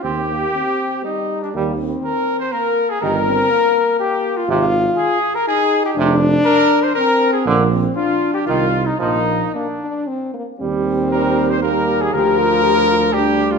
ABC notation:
X:1
M:3/4
L:1/16
Q:1/4=120
K:Eb
V:1 name="Cornet"
G8 E3 D | z4 B3 c B3 A | B8 G3 F | z4 A3 B A3 G |
z4 B3 c B3 A | z4 F3 G F3 E | E4 D4 z4 | z4 B3 c B3 A |
B8 G3 F |]
V:2 name="Trumpet"
G8 E3 D | z4 B3 c B3 A | B8 G3 F | z4 A3 B A3 G |
z4 B3 c B3 A | z4 F3 G F3 E | E4 D4 z4 | z4 B3 c B3 A |
B8 G3 F |]
V:3 name="French horn"
C2 B,2 C4 G,4 | B,2 C6 B,4 | G,2 C2 B,8 | F6 z2 E4 |
D8 C4 | B,2 C2 D4 E4 | B,4 B,2 D2 C2 B,2 | C8 B,4 |
G2 F2 G2 F2 D4 |]
V:4 name="Trombone" clef=bass
C2 z8 z2 | G,2 z8 z2 | E,2 z8 z2 | C,2 z8 z2 |
C,2 z8 z2 | D,2 z6 E,2 z2 | F,2 z8 z2 | G,4 G,4 G,4 |
F,8 G,4 |]
V:5 name="Tuba" clef=bass
E,,4 z8 | E,,4 z8 | G,,,4 z8 | A,,,4 z8 |
F,,,4 z8 | B,,,4 z4 C,,4 | B,,,4 z8 | E,,12 |
D,,12 |]